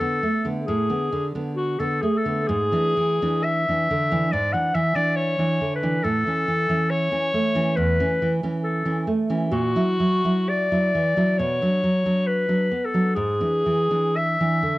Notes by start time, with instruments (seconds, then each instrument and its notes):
Already playing: clarinet A4
0.00 nylon-string guitar D3 B3
0.23 nylon-string guitar A3
0.45 nylon-string guitar D3 B3
0.65 nylon-string guitar A2, clarinet G#4
0.90 nylon-string guitar D3 B3
1.12 nylon-string guitar D3
1.35 nylon-string guitar D3 B3
1.56 clarinet F#4
1.79 nylon-string guitar D3 B3, clarinet A4
2.02 nylon-string guitar A3, clarinet G#4
2.18 clarinet A4
2.25 nylon-string guitar D3 B3
2.48 nylon-string guitar G#2, clarinet G#4
2.72 nylon-string guitar E3 D4
2.97 nylon-string guitar E3
3.22 nylon-string guitar E3 D4
3.44 clarinet E5
3.68 nylon-string guitar E3 D4
3.91 nylon-string guitar D3
4.12 nylon-string guitar E3 D4
4.32 nylon-string guitar G#2, clarinet D5
4.53 nylon-string guitar E3 D4, clarinet F#5
4.74 nylon-string guitar E3, clarinet E5
4.95 nylon-string guitar E3 D4, clarinet D5
5.16 clarinet C#5
5.39 nylon-string guitar E3 D4
5.61 nylon-string guitar D3
5.75 clarinet B4
5.83 nylon-string guitar E3 D4
6.04 nylon-string guitar A2, clarinet A4
6.27 nylon-string guitar E3 C#4
6.48 nylon-string guitar E3
6.69 nylon-string guitar E3 C#4
6.90 clarinet C#5
7.12 nylon-string guitar E3 C#4
7.34 nylon-string guitar A3
7.55 nylon-string guitar E3 C#4
7.76 nylon-string guitar E2, clarinet B4
8.00 nylon-string guitar E3 C#4
8.22 nylon-string guitar E3
8.43 nylon-string guitar E3 C#4
8.64 clarinet A4
8.86 nylon-string guitar E3 C#4
9.07 nylon-string guitar A3
9.30 nylon-string guitar E3 C#4
9.52 nylon-string guitar A#2, clarinet F#4
9.76 nylon-string guitar F#3 E4
10.00 nylon-string guitar F#3
10.24 nylon-string guitar F#3 E4
10.49 clarinet D5
10.72 nylon-string guitar F#3 E4
10.95 nylon-string guitar E3
11.17 nylon-string guitar F#3 E4
11.38 nylon-string guitar B2, clarinet C#5
11.62 nylon-string guitar F#3 D4
11.83 nylon-string guitar F#3
12.06 nylon-string guitar F#3 D4
12.27 clarinet B4
12.48 nylon-string guitar F#3 D4
12.71 nylon-string guitar B3
12.85 clarinet A4
12.94 nylon-string guitar F#3 D4
13.15 nylon-string guitar G#2, clarinet G#4
13.40 nylon-string guitar E3 D4
13.66 nylon-string guitar E3
13.90 nylon-string guitar E3 D4
14.16 clarinet E5
14.40 nylon-string guitar E3 D4
14.63 nylon-string guitar D3